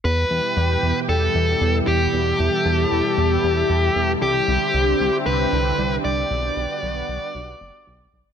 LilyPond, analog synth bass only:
\new Staff \with { instrumentName = "Analog synth bass" } { \clef bass \time 4/4 \key e \minor \tempo 4 = 115 e,8 e,8 e,8 e,8 e,8 e,8 e,8 e,8 | e,8 e,8 e,8 e,8 e,8 e,8 e,8 e,8 | c,8 c,8 c,8 c,8 c,8 c,8 c,8 c,8 | b,,8 b,,8 b,,8 b,,8 b,,8 fis,,8 b,,8 b,,8 | }